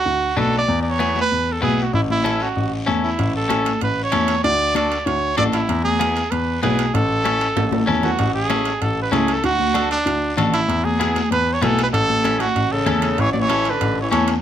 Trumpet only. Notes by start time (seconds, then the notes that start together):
Already playing: F#4
0.38 A4
0.58 D5
0.83 D5
0.90 C#5
1.21 B4
1.53 A4
1.63 G#4
1.83 F#4
1.95 E4
2.11 E4
2.42 F#4
3.04 E4
3.36 A4
3.83 B4
4.04 C#5
4.44 D5
4.77 D5
5.06 C#5
5.37 D5
5.54 E4
5.85 G#4
6.31 B4
6.63 G#4
6.94 A4
8.03 F#4
8.35 G#4
8.82 A4
9.02 B4
9.13 G#4
9.34 A4
9.45 F#4
9.92 D4
10.54 E4
10.85 G#4
11.32 B4
11.54 C#5
11.63 A4
11.84 B4
11.94 A4
12.40 F#4
12.72 A4
13.20 C#5
13.33 D5
13.40 C#5
13.70 B4
14.01 C#5
14.11 C#5